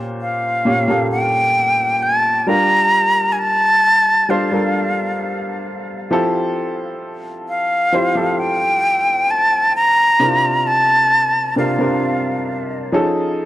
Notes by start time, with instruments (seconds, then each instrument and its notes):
Already playing: grand piano A#2 A#3 C#4 G4 C5
0.21 flute F5
0.65 grand piano A#2 A#3 C#4 G4 C#5
0.88 grand piano A#2 A#3 C#4 G4 A4
1.12 flute G5
2.03 flute A5
2.47 grand piano G3 D4 F4 G4 A#4, flute A#5
3.32 flute G#5
3.39 flute A5
4.29 grand piano G3 D4 F4 A4 C5, flute F5
4.51 grand piano G3 D4 F4 A4 A#4
6.11 grand piano F3 C4 E4 G4 A4
7.49 flute F5
7.92 grand piano F3 C4 E4 G4 C5
8.15 grand piano F3 C4 E4 G4 A4
8.39 flute G5
9.31 flute A5
9.76 flute A#5
10.19 grand piano C3 C4 D4 E4 A#4
10.27 grand piano F4
10.67 flute A5
11.56 grand piano C3 C4 D4 F4 A#4, flute F5
11.79 grand piano C3 C4 D4 F4 A#4
12.92 grand piano F3 C#4 D#4 G#4 A4